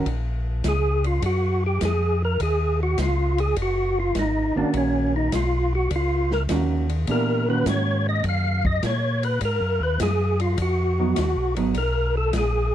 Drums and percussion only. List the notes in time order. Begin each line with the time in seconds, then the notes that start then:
0.06 kick, ride
0.64 kick, snare, hi-hat pedal, ride
1.04 ride
1.22 kick, ride
1.81 kick, snare, hi-hat pedal, ride
2.40 kick, ride
2.98 kick, snare, hi-hat pedal, ride
3.38 ride
3.56 kick, ride
4.15 kick, snare, hi-hat pedal, ride
4.74 kick, ride
5.32 kick, snare, hi-hat pedal, ride
5.91 kick, ride
6.31 snare
6.49 kick, snare, hi-hat pedal, ride
6.89 ride
7.07 kick, ride
7.66 kick, snare, hi-hat pedal, ride
8.24 kick, ride
8.65 kick
8.83 kick, snare, hi-hat pedal, ride
9.23 ride
9.41 kick, ride
10.00 kick, snare, hi-hat pedal, ride
10.40 ride
10.58 kick, ride
11.16 kick, snare, hi-hat pedal, ride
11.56 ride
11.74 kick, ride
12.33 kick, snare, hi-hat pedal, ride